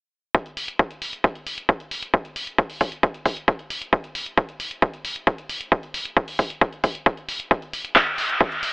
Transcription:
0.35 kick, closed hi-hat
0.46 closed hi-hat
0.57 open hi-hat
0.68 closed hi-hat
0.79 kick, closed hi-hat
0.91 closed hi-hat
1.02 open hi-hat
1.13 closed hi-hat
1.24 kick, closed hi-hat
1.35 closed hi-hat
1.47 open hi-hat
1.58 closed hi-hat
1.69 kick, closed hi-hat
1.80 closed hi-hat
1.91 open hi-hat
2.03 closed hi-hat
2.14 kick, closed hi-hat
2.25 closed hi-hat
2.36 open hi-hat
2.47 closed hi-hat
2.58 kick, closed hi-hat
2.70 open hi-hat
2.81 kick, open hi-hat
2.92 closed hi-hat
3.03 kick, closed hi-hat
3.14 closed hi-hat
3.26 kick, open hi-hat
3.37 closed hi-hat
3.48 kick, closed hi-hat
3.59 closed hi-hat
3.70 open hi-hat
3.82 closed hi-hat
3.93 kick, closed hi-hat
4.04 closed hi-hat
4.15 open hi-hat
4.26 closed hi-hat
4.38 kick, closed hi-hat
4.49 closed hi-hat
4.60 open hi-hat
4.71 closed hi-hat
4.82 kick, closed hi-hat
4.94 closed hi-hat
5.05 open hi-hat
5.16 closed hi-hat
5.27 kick, closed hi-hat
5.38 closed hi-hat
5.49 open hi-hat
5.61 closed hi-hat
5.72 kick, closed hi-hat
5.83 closed hi-hat
5.94 open hi-hat
6.05 closed hi-hat
6.17 kick, closed hi-hat
6.28 open hi-hat
6.39 kick, open hi-hat
6.50 closed hi-hat
6.61 kick, closed hi-hat
6.73 closed hi-hat
6.84 kick, open hi-hat
6.95 closed hi-hat
7.06 kick, closed hi-hat
7.17 closed hi-hat
7.29 open hi-hat
7.40 closed hi-hat
7.51 kick, closed hi-hat
7.62 closed hi-hat
7.73 open hi-hat
7.85 closed hi-hat
7.96 kick, clap, closed hi-hat
8.07 closed hi-hat
8.18 open hi-hat
8.29 closed hi-hat
8.41 kick, closed hi-hat
8.52 closed hi-hat
8.63 open hi-hat

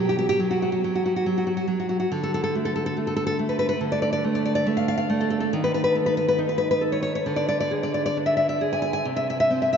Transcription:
Already playing: B2 F#3
0.09 G4
0.19 G4
0.29 G4
0.40 F#3
0.51 F#4
0.62 F#4
0.72 F#4
0.84 F#3
0.95 F#4
1.06 F#4
1.16 F#4
1.26 F#3
1.38 F#4
1.47 F#4
1.57 F#4
1.68 F#3
1.80 F#4
1.89 F#4
2.00 F#4
2.12 D3
2.24 A4
2.34 A4
2.44 A4
2.55 A3
2.65 A4
2.76 A4
2.86 A4
2.97 A3
3.07 A4
3.16 A4
3.27 A4
3.39 A3
3.49 B4
3.59 B4
3.69 B4
3.81 D3
3.92 D5
4.02 D5
4.13 D5
4.24 A3
4.35 D5
4.45 D5
4.55 D5
4.67 A3
4.77 F5
4.88 F5
4.98 F5
5.10 A3
5.21 A4
5.30 A4
5.40 A4
5.53 D#3
5.64 B4
5.74 B4
5.84 B4
5.95 A4
6.06 B4
6.17 B4
6.29 B4
6.38 D#4
6.49 B4
6.58 B4
6.71 B4
6.81 A4
6.92 C#5
7.03 C#5
7.15 C#5
7.26 D3
7.36 D5
7.49 D5
7.60 D5
7.71 G#4
7.83 D5
7.94 D5
8.06 D5
8.17 D4
8.26 E5
8.37 E5
8.49 E5
8.61 G#4
8.73 G#5
8.82 G#5
8.93 G#5
9.05 C3
9.16 E5
9.30 E5
9.40 E5
9.51 C4
9.62 E5
9.73 E5

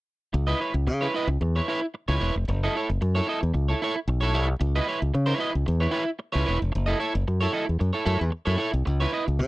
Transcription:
0.33 C#2, muted clean electric guitar stroke
0.47 E4 B4 D#5
0.60 E4 B4 C#5
0.74 C#2, muted clean electric guitar stroke
0.87 C#3, muted clean electric guitar stroke
1.01 E4 B4 C#5
1.14 E4 B4 D#5
1.27 C#2, muted clean electric guitar stroke
1.41 E2, muted clean electric guitar stroke
1.56 E4 B4 C#5
1.68 E4 B4 C#5
1.81 muted clean electric guitar stroke
1.94 muted clean electric guitar stroke
2.08 C#2 E4 B4 C#5
2.20 E1 E4 B4 C#5
2.36 F1, muted clean electric guitar stroke
2.48 F#1, muted clean electric guitar stroke
2.64 E4 A4 D#5
2.75 E4 A4 C#5
2.89 F#1, muted clean electric guitar stroke
3.01 F#2, muted clean electric guitar stroke
3.15 E4 A4 C#5
3.27 E4 A4 D#5
3.41 E2, muted clean electric guitar stroke
3.54 C#2, muted clean electric guitar stroke
3.69 E4 A4 C#5
3.82 E4 A4 C#5
3.96 muted clean electric guitar stroke
4.08 B1, muted clean electric guitar stroke
4.21 E4 A4 C#5
4.34 C2 E4 A4 C#5
4.49 muted clean electric guitar stroke
4.60 C#2, muted clean electric guitar stroke
4.76 E4 B4 D#5
4.87 E4 B4 C#5
5.01 C#2, muted clean electric guitar stroke
5.14 C#3, muted clean electric guitar stroke
5.26 E4 B4 C#5
5.38 E4 B4 D#5
5.53 C#2, muted clean electric guitar stroke
5.66 E2, muted clean electric guitar stroke
5.80 E4 B4 C#5
5.91 E4 B4 C#5
6.05 muted clean electric guitar stroke
6.19 muted clean electric guitar stroke
6.32 C#2 E4 B4 C#5
6.46 E1 E4 B4 C#5
6.60 F1, muted clean electric guitar stroke
6.72 F#1, muted clean electric guitar stroke
6.86 E4 A4 D#5
6.99 E4 A4 C#5
7.14 F#1, muted clean electric guitar stroke
7.28 F#2, muted clean electric guitar stroke
7.41 E4 A4 C#5
7.53 E4 A4 D#5
7.66 E2, muted clean electric guitar stroke
7.79 F#2, muted clean electric guitar stroke
7.93 E4 A4 C#5
8.05 F#2 E4 A4 C#5
8.20 E2, muted clean electric guitar stroke
8.31 muted clean electric guitar stroke
8.45 F#2 E4 A4 C#5
8.57 E4 A4 C#5
8.72 C2, muted clean electric guitar stroke
8.85 C#2, muted clean electric guitar stroke
9.00 E4 B4 C#5
9.12 E4 B4 D#5
9.26 C#2, muted clean electric guitar stroke
9.39 C#3, muted clean electric guitar stroke

